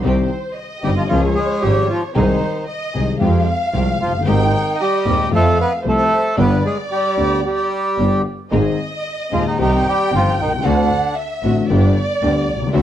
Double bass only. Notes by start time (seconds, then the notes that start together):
0.04 C2
0.84 G1
1.11 C#2
1.64 G#1
2.16 C2
2.96 C2
3.21 F2
3.74 C2
4.01 F#1
4.27 G#1
5.06 D#2
5.33 F2
5.85 C2
6.38 G1
7.17 D2
7.98 G1
8.52 G#1
9.33 D#2
9.59 C2
10.12 G1
10.38 C2
10.65 D2
11.43 A1
11.69 G1
12.22 D2
12.48 C2
12.74 D2